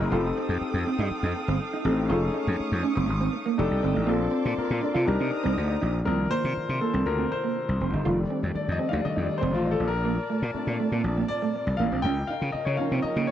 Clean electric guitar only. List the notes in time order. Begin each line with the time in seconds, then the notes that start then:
0.12 F4
0.25 muted clean electric guitar stroke
0.38 C4
0.61 muted clean electric guitar stroke
0.87 C4
1.00 D#4
1.24 D#4
1.36 muted clean electric guitar stroke
1.49 C4
1.60 muted clean electric guitar stroke
1.73 D#4
1.85 C4
2.10 F4
2.23 muted clean electric guitar stroke
2.34 D#4
2.59 muted clean electric guitar stroke
2.83 C#4
2.95 C4
3.21 C4
3.33 muted clean electric guitar stroke
3.46 A#3
3.58 muted clean electric guitar stroke
3.83 C4
3.94 A3
4.07 A#3
4.19 muted clean electric guitar stroke
4.31 C4
4.56 muted clean electric guitar stroke
4.82 D4
4.94 F4
5.20 C4
5.31 muted clean electric guitar stroke
5.44 C4
5.56 muted clean electric guitar stroke
5.68 D#4
5.81 D#4
6.06 C4
6.18 muted clean electric guitar stroke
6.30 A#3
6.56 muted clean electric guitar stroke
6.81 A#3
6.93 C4
7.18 C4
7.31 muted clean electric guitar stroke
7.44 A#3
7.56 muted clean electric guitar stroke
7.82 C4
7.94 D#4
8.05 F4
8.18 muted clean electric guitar stroke
8.30 C4
8.55 muted clean electric guitar stroke
8.79 C4
8.92 D#4
9.16 D#4
9.30 muted clean electric guitar stroke
9.41 C4
9.55 muted clean electric guitar stroke
9.67 D#4
9.80 D4
10.05 A#3
10.17 muted clean electric guitar stroke
10.30 A3
10.54 muted clean electric guitar stroke
10.80 A3
10.93 A#3
11.18 A#3
11.30 muted clean electric guitar stroke
11.42 A3
11.55 muted clean electric guitar stroke
11.79 A#3
11.93 C4
12.05 C#4
12.18 muted clean electric guitar stroke
12.30 D#4
12.55 muted clean electric guitar stroke
12.79 C#4
12.92 C4
13.16 A#3